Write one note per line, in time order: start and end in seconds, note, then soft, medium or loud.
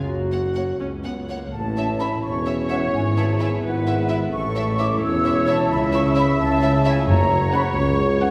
0.00 1.47 F#2 soft
0.00 1.75 C#4 soft
0.00 1.51 F#4 soft
0.00 1.53 A#4 soft
0.06 0.68 F#1 soft
0.06 0.68 F#2 medium
0.06 0.78 F#4 medium
0.31 0.40 A#3 soft
0.31 0.39 C#5 soft
0.31 0.40 F#5 soft
0.55 0.64 A#3 soft
0.55 0.63 C#5 soft
0.55 0.63 F#5 soft
0.80 1.41 C#2 soft
0.80 1.42 C#2 soft
0.80 0.88 C#4 medium
1.04 1.12 B3 soft
1.04 1.12 C#5 soft
1.04 1.12 F#5 soft
1.29 1.53 A#3 soft
1.29 1.37 C#5 soft
1.29 1.38 F#5 soft
1.52 2.12 A1 medium
1.52 2.12 A2 medium
1.52 2.96 A2 medium
1.52 2.91 C#4 medium
1.52 4.30 E4 medium
1.52 1.96 A5 medium
1.76 2.21 C#4 soft
1.76 1.84 C#4 soft
1.76 1.84 C#5 soft
1.76 1.85 E5 soft
1.99 2.08 C#4 medium
1.99 2.95 A4 soft
1.99 2.08 C#5 soft
1.99 2.08 E5 soft
1.99 2.23 B5 medium
2.22 2.82 E1 soft
2.22 2.82 E1 medium
2.22 2.82 E2 medium
2.22 2.68 C#4 soft
2.22 3.60 C#5 medium
2.22 2.69 C#6 medium
2.45 2.95 E3 soft
2.45 2.54 C#4 soft
2.45 2.54 C#5 soft
2.45 2.54 E5 soft
2.69 2.78 C#4 soft
2.69 2.78 C#5 soft
2.69 2.77 E5 soft
2.69 2.76 F#5 medium
2.93 3.52 G#1 medium
2.93 3.52 G#2 medium
2.93 4.34 G#2 medium
2.93 4.30 B3 medium
2.93 3.00 G#5 medium
3.16 3.62 B3 soft
3.16 3.24 E4 soft
3.16 3.25 B4 soft
3.16 3.25 E5 soft
3.16 3.24 A5 medium
3.39 3.47 E4 medium
3.39 4.34 B4 soft
3.39 3.47 B4 soft
3.39 3.48 E5 soft
3.39 3.48 G#5 medium
3.63 4.21 G#1 medium
3.63 4.21 G#2 medium
3.63 4.08 B3 soft
3.63 4.33 B4 medium
3.63 4.09 F#5 medium
3.86 4.34 G#3 soft
3.86 3.94 E4 soft
3.86 3.94 B4 soft
3.86 3.94 E5 soft
4.09 4.34 B3 soft
4.09 4.17 E4 soft
4.09 4.16 B4 soft
4.09 4.17 E5 soft
4.09 4.15 E5 medium
4.32 4.91 A1 medium
4.32 4.91 A2 medium
4.32 5.73 A2 medium
4.32 7.08 C#4 medium
4.32 7.04 E4 medium
4.32 5.01 A4 medium
4.32 4.78 C#6 medium
4.55 5.02 C#4 soft
4.55 4.63 E4 soft
4.55 4.63 C#5 soft
4.55 4.63 E5 medium
4.79 4.87 E4 medium
4.79 6.16 A4 soft
4.79 4.87 C#5 medium
4.79 4.86 E5 medium
4.79 5.03 D6 medium
5.02 5.59 E1 medium
5.02 5.60 E1 medium
5.02 5.59 E2 medium
5.02 5.48 C#4 soft
5.02 5.71 C#5 medium
5.02 5.47 E6 medium
5.24 5.73 E3 medium
5.24 5.32 E4 medium
5.24 5.32 C#5 soft
5.24 5.33 E5 soft
5.47 5.54 E4 medium
5.47 5.54 C#5 medium
5.47 5.55 E5 medium
5.47 5.71 A5 medium
5.71 6.28 C#2 medium
5.71 6.28 C#3 medium
5.71 7.10 C#3 medium
5.71 7.06 E5 medium
5.71 5.78 B5 loud
5.93 6.39 C#4 soft
5.93 6.01 E4 medium
5.93 6.00 C#5 medium
5.93 6.00 E5 medium
5.93 6.00 C#6 medium
6.15 6.23 E4 medium
6.15 7.10 A4 soft
6.15 6.23 C#5 medium
6.15 6.24 E5 medium
6.15 6.24 B5 medium
6.39 6.97 C#2 medium
6.39 6.97 C#3 medium
6.39 6.85 C#4 medium
6.39 6.85 A5 medium
6.62 7.10 A3 medium
6.62 6.69 E4 medium
6.62 6.69 C#5 medium
6.62 6.70 E5 medium
6.85 7.30 C#4 soft
6.85 6.93 E4 medium
6.85 6.92 C#5 medium
6.85 6.92 E5 medium
6.85 7.08 G#5 medium
7.08 7.62 F#1 medium
7.08 7.62 F#2 loud
7.08 8.31 F#2 medium
7.08 8.31 C#5 medium
7.08 7.53 A#5 loud
7.31 7.39 C#4 medium
7.31 7.75 C#4 medium
7.31 7.40 F#4 medium
7.53 7.70 C#4 medium
7.53 7.63 C#4 medium
7.53 7.62 F#4 medium
7.53 8.31 C#5 medium
7.53 7.71 C#5 medium
7.53 7.70 F#5 medium
7.53 7.60 B5 medium
7.74 8.30 C#2 medium
7.74 8.30 C#2 loud
7.74 8.21 C#4 medium
7.74 8.01 C#6 medium
7.98 8.31 C#3 medium
7.98 8.07 C#4 medium
7.98 8.07 F#4 medium
8.21 8.31 C#4 medium
8.21 8.31 F#4 medium
8.21 8.31 C#5 medium
8.21 8.31 F#5 medium
8.21 8.31 F#5 loud